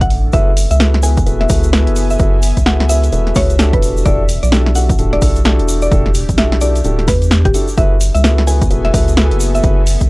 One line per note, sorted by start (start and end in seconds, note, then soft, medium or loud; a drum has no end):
0.00 0.12 B1 medium
0.00 0.33 D4 medium
0.00 7.77 A4 medium
0.00 0.16 F#5 loud
0.00 0.33 G5 medium
0.00 kick loud
0.00 closed hi-hat medium
0.10 0.30 A1 medium
0.10 open hi-hat medium
0.33 0.66 F#1 medium
0.33 5.42 B3 medium
0.33 0.49 E4 loud
0.33 0.49 F#4 medium
0.33 0.49 G#4 medium
0.33 0.49 A4 medium
0.33 0.49 B4 loud
0.33 0.51 E5 medium
0.33 kick loud
0.33 closed hi-hat medium
0.33 shaker soft
0.50 5.18 E5 medium
0.57 open hi-hat loud
0.57 shaker medium
0.71 1.24 C#2 medium
0.71 0.86 E5 medium
0.71 closed hi-hat medium
0.71 shaker soft
0.80 0.96 E4 medium
0.80 0.96 F#4 medium
0.80 0.96 G#4 medium
0.80 0.96 A4 medium
0.80 0.96 B4 medium
0.80 snare loud
0.80 shaker soft
0.94 snare medium
1.03 1.19 E4 medium
1.03 1.19 F#4 medium
1.03 1.19 G#4 medium
1.03 1.19 A4 medium
1.03 1.19 B4 medium
1.03 1.21 G#5 medium
1.03 open hi-hat loud
1.03 shaker medium
1.17 3.82 G#5 medium
1.17 kick loud
1.17 closed hi-hat medium
1.17 shaker soft
1.26 1.46 E1 loud
1.26 1.47 E4 medium
1.26 1.47 F#4 medium
1.26 1.47 G#4 medium
1.26 1.47 A4 medium
1.26 1.47 B4 medium
1.26 closed hi-hat medium
1.26 shaker soft
1.41 1.55 E5 medium
1.41 snare soft
1.41 closed hi-hat soft
1.49 1.89 C#2 medium
1.49 1.66 E4 medium
1.49 1.66 F#4 medium
1.49 1.66 G#4 medium
1.49 1.66 A4 medium
1.49 1.66 B4 loud
1.49 kick loud
1.49 open hi-hat loud
1.49 shaker medium
1.63 closed hi-hat soft
1.63 shaker medium
1.73 2.17 E4 medium
1.73 2.17 F#4 medium
1.73 2.17 G#4 medium
1.73 2.17 A4 medium
1.73 2.17 B4 loud
1.73 snare loud
1.73 shaker soft
1.87 2.17 F#1 medium
1.87 closed hi-hat medium
1.96 open hi-hat medium
1.96 shaker medium
2.10 2.25 E5 medium
2.10 shaker soft
2.19 2.53 F#1 loud
2.19 2.36 E4 loud
2.19 2.36 F#4 medium
2.19 2.36 G#4 medium
2.19 2.36 A4 medium
2.19 2.36 B4 loud
2.19 kick loud
2.19 closed hi-hat medium
2.19 shaker soft
2.42 open hi-hat loud
2.42 shaker loud
2.57 3.10 C#2 medium
2.57 kick medium
2.57 closed hi-hat medium
2.57 shaker medium
2.66 2.82 E4 medium
2.66 2.82 F#4 medium
2.66 2.82 G#4 medium
2.66 2.82 A4 medium
2.66 2.82 B4 medium
2.66 2.79 F#5 medium
2.66 snare loud
2.66 shaker soft
2.80 snare medium
2.89 3.05 E4 medium
2.89 3.05 F#4 medium
2.89 3.05 G#4 medium
2.89 3.05 A4 medium
2.89 3.05 B4 medium
2.89 3.11 E5 medium
2.89 open hi-hat loud
2.89 shaker loud
3.03 closed hi-hat medium
3.03 shaker medium
3.12 3.32 E1 loud
3.12 3.34 E4 medium
3.12 3.34 F#4 medium
3.12 3.34 G#4 medium
3.12 3.34 A4 medium
3.12 3.34 B4 medium
3.12 closed hi-hat medium
3.12 shaker soft
3.27 snare soft
3.27 closed hi-hat soft
3.35 3.75 C#2 loud
3.35 3.52 E4 loud
3.35 3.52 F#4 medium
3.35 3.52 G#4 medium
3.35 3.52 A4 medium
3.35 3.52 B4 loud
3.35 3.54 C#5 medium
3.35 kick loud
3.35 snare medium
3.35 open hi-hat loud
3.35 shaker medium
3.50 closed hi-hat soft
3.50 shaker medium
3.59 4.03 D4 loud
3.59 4.03 E4 medium
3.59 4.03 F#4 medium
3.59 4.03 G4 medium
3.59 4.03 A4 loud
3.59 snare loud
3.59 shaker soft
3.73 4.03 E1 medium
3.73 3.88 B4 loud
3.73 kick loud
3.73 closed hi-hat medium
3.82 7.78 D4 medium
3.82 open hi-hat medium
3.82 shaker medium
3.97 shaker medium
4.05 4.39 E1 loud
4.05 4.22 D4 loud
4.05 4.22 E4 medium
4.05 4.22 F#4 medium
4.05 4.22 G4 medium
4.05 4.22 A4 loud
4.05 4.23 D5 loud
4.05 kick loud
4.05 closed hi-hat medium
4.05 shaker soft
4.29 open hi-hat loud
4.29 shaker loud
4.43 4.96 B1 medium
4.43 4.58 D5 medium
4.43 closed hi-hat medium
4.43 shaker soft
4.52 4.68 D4 medium
4.52 4.68 E4 medium
4.52 4.68 F#4 medium
4.52 4.68 G4 medium
4.52 4.68 A4 medium
4.52 snare loud
4.52 shaker soft
4.66 snare medium
4.75 4.91 D4 medium
4.75 4.91 E4 medium
4.75 4.91 F#4 medium
4.75 4.91 G4 medium
4.75 4.91 A4 medium
4.75 4.93 F#5 medium
4.75 open hi-hat loud
4.75 shaker medium
4.89 kick loud
4.89 closed hi-hat medium
4.89 shaker medium
4.98 5.18 D1 loud
4.98 5.20 D4 medium
4.98 5.20 E4 medium
4.98 5.20 F#4 medium
4.98 5.20 G4 medium
4.98 5.20 A4 medium
4.98 closed hi-hat medium
4.98 shaker soft
5.13 5.28 D5 loud
5.13 snare soft
5.13 closed hi-hat soft
5.22 5.61 B1 loud
5.22 5.38 D4 medium
5.22 5.38 E4 medium
5.22 5.38 F#4 medium
5.22 5.38 G4 medium
5.22 7.77 G4 medium
5.22 5.38 A4 loud
5.22 kick loud
5.22 open hi-hat loud
5.22 shaker loud
5.36 closed hi-hat soft
5.36 shaker soft
5.45 5.89 D4 medium
5.45 5.89 E4 medium
5.45 5.89 F#4 medium
5.45 5.89 G4 medium
5.45 5.89 A4 loud
5.45 snare loud
5.45 shaker soft
5.59 5.89 E1 medium
5.59 closed hi-hat medium
5.68 open hi-hat medium
5.68 shaker loud
5.82 5.97 D5 medium
5.82 shaker medium
5.91 6.25 E1 loud
5.91 6.08 D4 medium
5.91 6.08 E4 medium
5.91 6.08 F#4 medium
5.91 6.08 G4 medium
5.91 6.08 A4 loud
5.91 kick loud
5.91 closed hi-hat medium
5.91 shaker soft
6.06 snare soft
6.15 open hi-hat loud
6.15 shaker loud
6.29 6.82 B1 medium
6.29 kick medium
6.29 closed hi-hat medium
6.29 shaker medium
6.38 6.54 D4 medium
6.38 6.54 E4 medium
6.38 6.54 F#4 medium
6.38 6.54 G4 medium
6.38 6.54 A4 medium
6.38 6.51 E5 medium
6.38 snare loud
6.38 shaker soft
6.52 snare medium
6.61 6.77 D4 medium
6.61 6.77 E4 medium
6.61 6.77 F#4 medium
6.61 6.77 G4 medium
6.61 6.77 A4 medium
6.61 6.83 D5 medium
6.61 open hi-hat medium
6.61 shaker medium
6.76 closed hi-hat medium
6.76 shaker soft
6.84 7.09 D1 loud
6.84 7.06 D4 medium
6.84 7.06 E4 medium
6.84 7.06 F#4 medium
6.84 7.06 G4 medium
6.84 7.06 A4 medium
6.84 closed hi-hat medium
6.84 shaker soft
6.99 snare soft
6.99 closed hi-hat soft
7.08 7.47 E2 medium
7.08 7.26 B4 medium
7.08 kick loud
7.08 snare medium
7.08 open hi-hat loud
7.08 shaker medium
7.22 closed hi-hat soft
7.22 shaker soft
7.31 snare loud
7.31 shaker soft
7.45 7.53 D1 loud
7.45 7.60 G4 medium
7.45 kick loud
7.45 closed hi-hat medium
7.54 7.65 D4 medium
7.54 7.65 E4 medium
7.54 7.65 F#4 medium
7.54 7.65 G4 medium
7.54 7.65 A4 medium
7.54 open hi-hat medium
7.54 shaker medium
7.68 shaker medium
7.77 8.11 F#1 medium
7.77 10.10 B3 loud
7.77 7.94 E4 medium
7.77 7.94 F#4 medium
7.77 7.94 G#4 medium
7.77 7.94 A4 medium
7.77 7.94 B4 loud
7.77 7.95 E5 medium
7.77 kick loud
7.77 closed hi-hat medium
7.77 shaker soft
7.96 10.10 A4 medium
8.01 10.10 G#5 medium
8.01 open hi-hat loud
8.01 shaker loud
8.15 8.68 C#2 medium
8.15 8.30 E5 loud
8.15 closed hi-hat medium
8.15 shaker medium
8.24 8.40 E4 medium
8.24 8.40 F#4 medium
8.24 8.40 G#4 medium
8.24 8.40 A4 medium
8.24 8.40 B4 medium
8.24 snare loud
8.24 shaker soft
8.38 snare medium
8.47 8.63 E4 medium
8.47 8.63 F#4 medium
8.47 8.63 G#4 medium
8.47 8.63 A4 medium
8.47 8.63 B4 medium
8.47 10.10 E5 medium
8.47 8.65 G#5 medium
8.47 open hi-hat medium
8.47 shaker loud
8.62 kick loud
8.62 closed hi-hat medium
8.62 shaker soft
8.71 8.90 E1 loud
8.71 8.92 E4 medium
8.71 8.92 F#4 medium
8.71 8.92 G#4 medium
8.71 8.92 A4 medium
8.71 8.92 B4 medium
8.71 closed hi-hat medium
8.71 shaker soft
8.85 9.00 E5 medium
8.85 snare soft
8.85 closed hi-hat soft
8.94 9.33 C#2 loud
8.94 9.10 E4 medium
8.94 9.10 F#4 medium
8.94 9.10 G#4 medium
8.94 9.10 A4 medium
8.94 9.10 B4 loud
8.94 kick loud
8.94 open hi-hat loud
8.94 shaker medium
9.08 closed hi-hat soft
9.08 shaker medium
9.17 9.62 E4 medium
9.17 9.62 F#4 medium
9.17 9.62 G#4 medium
9.17 9.62 A4 medium
9.17 9.62 B4 loud
9.17 snare loud
9.17 shaker soft
9.31 9.61 F#1 medium
9.31 closed hi-hat medium
9.40 open hi-hat medium
9.40 shaker medium
9.55 9.70 E5 medium
9.55 shaker soft
9.63 9.97 F#1 loud
9.63 9.80 E4 loud
9.63 9.80 F#4 medium
9.63 9.80 G#4 medium
9.63 9.80 A4 medium
9.63 9.80 B4 loud
9.63 kick loud
9.63 closed hi-hat medium
9.63 shaker soft
9.87 open hi-hat loud
9.87 shaker medium
10.01 10.10 C#2 medium
10.01 kick medium
10.01 closed hi-hat medium
10.01 shaker medium